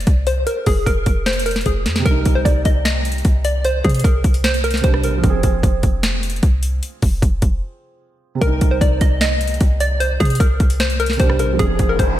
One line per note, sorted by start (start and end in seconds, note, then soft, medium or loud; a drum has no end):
0.00 0.23 D5 medium
0.00 closed hi-hat soft
0.07 0.45 C2 loud
0.07 kick medium
0.07 closed hi-hat medium
0.27 0.43 C5 medium
0.27 closed hi-hat medium
0.47 0.62 A#4 medium
0.47 closed hi-hat medium
0.66 0.86 F1 loud
0.66 0.82 G#4 medium
0.66 kick medium
0.66 open hi-hat medium
0.86 1.06 F1 loud
0.86 1.24 A#4 medium
0.86 kick loud
0.86 closed hi-hat medium
1.06 1.64 F1 loud
1.06 kick medium
1.06 closed hi-hat medium
1.26 1.42 C5 medium
1.26 finger snap medium
1.26 snare loud
1.26 closed hi-hat soft
1.33 closed hi-hat medium
1.39 closed hi-hat medium
1.46 1.62 A#4 medium
1.46 closed hi-hat medium
1.51 closed hi-hat medium
1.56 snare medium
1.56 closed hi-hat medium
1.61 closed hi-hat soft
1.66 1.87 F1 loud
1.66 1.82 G#4 medium
1.66 kick medium
1.66 closed hi-hat medium
1.86 2.05 F2 medium
1.86 snare medium
1.86 closed hi-hat medium
1.96 4.77 C3 medium
1.96 snare medium
1.96 closed hi-hat medium
2.05 2.25 C2 loud
2.05 4.80 G3 medium
2.05 2.34 A#4 loud
2.05 kick loud
2.05 closed hi-hat medium
2.11 4.82 D#4 medium
2.25 2.45 C2 loud
2.25 kick medium
2.25 closed hi-hat medium
2.35 2.43 C5 medium
2.45 2.65 C2 loud
2.45 2.61 D5 medium
2.45 kick loud
2.45 closed hi-hat medium
2.65 3.23 C2 loud
2.65 2.81 D#5 medium
2.65 kick medium
2.65 closed hi-hat medium
2.85 3.41 D#5 medium
2.85 finger snap loud
2.85 snare loud
2.85 closed hi-hat medium
3.05 closed hi-hat medium
3.12 closed hi-hat medium
3.18 closed hi-hat soft
3.25 3.82 C2 loud
3.25 kick medium
3.25 closed hi-hat medium
3.45 3.60 D5 medium
3.45 closed hi-hat medium
3.65 3.80 C5 medium
3.65 closed hi-hat medium
3.84 4.04 C3 loud
3.84 4.00 G#4 medium
3.84 kick medium
3.84 closed hi-hat soft
3.89 closed hi-hat medium
3.94 closed hi-hat medium
3.99 closed hi-hat medium
4.04 4.23 C2 loud
4.04 4.42 A#4 medium
4.04 kick loud
4.04 closed hi-hat medium
4.24 4.82 C2 loud
4.24 kick medium
4.24 closed hi-hat medium
4.34 closed hi-hat medium
4.44 4.60 C5 medium
4.44 finger snap loud
4.44 snare loud
4.44 closed hi-hat medium
4.54 closed hi-hat medium
4.64 4.80 A#4 medium
4.64 closed hi-hat medium
4.71 snare medium
4.71 closed hi-hat medium
4.77 5.22 C3 medium
4.77 closed hi-hat medium
4.84 5.05 C2 loud
4.84 5.24 G3 soft
4.84 5.25 D4 medium
4.84 5.00 C5 medium
4.84 kick loud
4.84 closed hi-hat medium
4.94 cross-stick medium
5.04 5.15 A#1 loud
5.04 5.20 A#4 medium
5.04 closed hi-hat medium
5.14 5.23 C2 loud
5.14 8.35 F3 medium
5.24 5.43 F1 loud
5.24 8.38 C4 medium
5.24 kick loud
5.24 closed hi-hat medium
5.30 8.40 G#4 medium
5.43 5.63 F1 loud
5.43 kick medium
5.43 closed hi-hat medium
5.63 5.82 F1 loud
5.63 kick loud
5.63 closed hi-hat medium
5.83 6.41 F1 loud
5.83 kick medium
5.83 closed hi-hat medium
6.03 finger snap medium
6.03 snare loud
6.03 closed hi-hat medium
6.23 closed hi-hat medium
6.30 closed hi-hat medium
6.36 closed hi-hat soft
6.43 6.81 C2 loud
6.43 kick loud
6.43 closed hi-hat medium
6.63 closed hi-hat medium
6.83 closed hi-hat medium
7.02 7.22 F1 loud
7.02 kick medium
7.02 open hi-hat medium
7.22 7.41 F1 loud
7.22 kick loud
7.22 closed hi-hat medium
7.42 7.61 F1 loud
7.42 kick medium
7.42 closed hi-hat medium
8.35 11.12 C3 medium
8.41 8.61 C2 loud
8.41 11.15 G3 medium
8.41 8.70 A#4 loud
8.41 kick loud
8.41 closed hi-hat medium
8.47 11.18 D#4 medium
8.61 8.80 C2 loud
8.61 kick medium
8.61 closed hi-hat medium
8.71 8.79 C5 medium
8.81 9.00 C2 loud
8.81 8.97 D5 medium
8.81 kick loud
8.81 closed hi-hat medium
9.01 9.58 C2 loud
9.01 9.17 D#5 medium
9.01 kick medium
9.01 closed hi-hat medium
9.21 9.77 D#5 medium
9.21 finger snap loud
9.21 snare loud
9.21 closed hi-hat medium
9.41 closed hi-hat medium
9.47 closed hi-hat medium
9.54 closed hi-hat soft
9.61 10.18 C2 loud
9.61 kick loud
9.61 closed hi-hat medium
9.80 9.96 D5 medium
9.80 closed hi-hat medium
10.00 10.16 C5 medium
10.00 closed hi-hat medium
10.20 10.39 C3 loud
10.20 10.36 G#4 medium
10.20 kick medium
10.20 closed hi-hat soft
10.25 closed hi-hat medium
10.30 closed hi-hat medium
10.35 closed hi-hat medium
10.40 10.59 C2 loud
10.40 10.77 A#4 medium
10.40 kick loud
10.40 closed hi-hat medium
10.60 11.17 C2 loud
10.60 kick medium
10.60 closed hi-hat medium
10.70 closed hi-hat medium
10.80 10.96 C5 medium
10.80 finger snap medium
10.80 snare loud
10.80 closed hi-hat medium
10.90 closed hi-hat medium
11.00 11.15 A#4 medium
11.00 closed hi-hat medium
11.06 snare medium
11.06 closed hi-hat medium
11.13 11.58 C3 medium
11.13 closed hi-hat medium
11.20 11.41 C2 loud
11.20 11.59 G3 soft
11.20 11.61 D4 medium
11.20 11.35 C5 medium
11.20 kick loud
11.20 closed hi-hat medium
11.30 cross-stick medium
11.39 11.51 A#1 loud
11.39 11.55 A#4 medium
11.39 closed hi-hat medium
11.50 11.59 C2 loud
11.50 12.20 F3 medium
11.59 11.79 F1 loud
11.59 12.20 C4 medium
11.59 11.87 G#4 loud
11.59 kick loud
11.59 closed hi-hat medium
11.59 riser medium
11.65 12.20 G#4 medium
11.79 11.98 F1 loud
11.79 kick medium
11.79 closed hi-hat medium
11.89 11.97 A#4 medium
11.99 12.18 F1 loud
11.99 12.15 C5 medium
11.99 kick loud
11.99 closed hi-hat medium